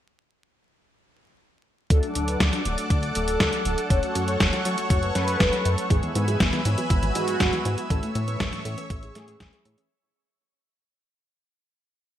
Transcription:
1.90 D2 F#3 A3 D4 A4 D5 F#5 D6, kick, closed hi-hat
2.03 D4, closed hi-hat
2.15 D1 D4, closed hi-hat
2.28 B4, closed hi-hat
2.40 D2 D4, kick, snare, closed hi-hat
2.53 D4, snare, closed hi-hat
2.65 D1 F#3 A3 D4 D5, closed hi-hat
2.78 D4, closed hi-hat
2.90 D2 D4, kick, closed hi-hat
3.03 A4, closed hi-hat
3.15 D1 F#3 A3 D4 A4, closed hi-hat
3.28 closed hi-hat
3.40 D2, kick, snare, closed hi-hat
3.53 closed hi-hat
3.65 D1, closed hi-hat
3.78 closed hi-hat
3.90 F#1 F#3 A3 C#4 A4 C#5 C#6, kick, closed hi-hat
4.03 F#4, closed hi-hat
4.15 F#2 F#4, closed hi-hat
4.28 C#5, closed hi-hat
4.40 F#1 F#4, kick, snare, closed hi-hat
4.53 F#4, snare, closed hi-hat
4.65 F#2 F#3 A3 C#4 C#5, closed hi-hat
4.78 F#4, closed hi-hat
4.90 F#1 F#4, kick, closed hi-hat
5.03 B4, closed hi-hat
5.15 F#2 F#3 A3 C#4 A4, snare, closed hi-hat
5.28 closed hi-hat
5.40 F#1, kick, snare, closed hi-hat
5.53 closed hi-hat
5.65 F#2, closed hi-hat
5.78 closed hi-hat
5.90 G#1 E3 G#3 B3 G#4 B4 E5 G#5 E6, kick, closed hi-hat
6.03 E2 B3, closed hi-hat
6.15 G#2 E3 B3, closed hi-hat
6.28 F#3 G#4, closed hi-hat
6.40 G#1 E3 B3, kick, snare, closed hi-hat
6.53 E2 B3, snare, closed hi-hat
6.65 G#2 E3 G#3 B3 C#5, closed hi-hat
6.78 F#3 B3, closed hi-hat
6.90 G#1 E3 B3, kick, closed hi-hat
7.03 E2 F#4, closed hi-hat
7.15 G#2 E3 G#3 B3 G#4, closed hi-hat
7.28 F#3, closed hi-hat
7.40 G#1 E3, kick, snare, closed hi-hat
7.53 E2, closed hi-hat
7.65 G#2 E3, closed hi-hat
7.78 F#3, closed hi-hat
7.90 A1 E3 A3 C#4 A4 C#5 E5 C#6, kick, closed hi-hat
8.03 A2 A3, closed hi-hat
8.15 A2 A3, closed hi-hat
8.28 B3 B4, closed hi-hat
8.40 A1 A3, kick, snare, closed hi-hat
8.53 A2 A3, snare, closed hi-hat
8.65 A2 E3 A3 C#4 C#5, closed hi-hat
8.78 A3 B3, closed hi-hat
8.90 A1 A3, kick, closed hi-hat
9.03 A2 G#4, closed hi-hat
9.15 A2 E3 A3 C#4 A4, snare, closed hi-hat
9.28 A2 E3 A3 C#4 B4, closed hi-hat
9.40 A1 C#4, kick, snare, closed hi-hat
9.53 A3, closed hi-hat
9.65 A2 A4, closed hi-hat
9.78 C#4, closed hi-hat

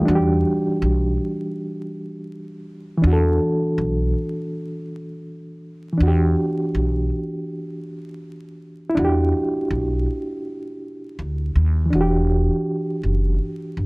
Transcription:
Already playing: G3 D#4
0.00 E3
0.05 E2 D4
0.10 F#4
0.15 G4
0.82 B1
2.98 E3
3.02 E2 D4
3.07 F#4
3.13 A4
3.78 B1
5.93 E3
5.98 E2 D4
6.03 F#4
6.08 G4
6.75 B1
8.89 E4
8.95 E2 D4
8.99 F#4
9.05 G4
9.71 B1
11.19 D2
11.56 D#2
11.86 E3
11.90 E1 D4
11.95 F#4
12.01 G4
13.03 F#1
13.77 G1

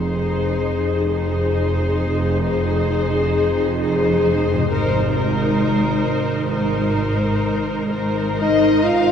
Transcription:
Already playing: F1 F2 C4 D#4 G#4 C5
0.67 F1 F2
1.12 D#4 G#4 C5
2.01 F1 F2
2.46 D#4 G#4 C5
3.35 F1 F2
3.81 D#4 G#4 C5
4.53 G#2
4.57 C3
4.62 D#4
4.67 G#2 D#4 A#4
4.71 G#1 C5
5.15 D#4 A#4 C5
6.06 G#1 G#2
6.53 D#4 A#4 C5
7.46 G#1 G#2
7.93 D#4 A#4 C5
8.40 D#4 D#5
8.84 G#1 G#2 F4 F5

